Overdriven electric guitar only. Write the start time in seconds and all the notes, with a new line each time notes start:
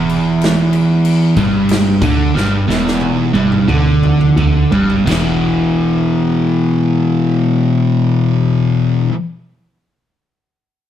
Already playing: E2
1.37 G2
2.02 D3
2.35 G2
2.68 E2
3.33 G2
3.68 D3
4.37 D3
4.72 G2
5.05 E2 B2
5.10 E3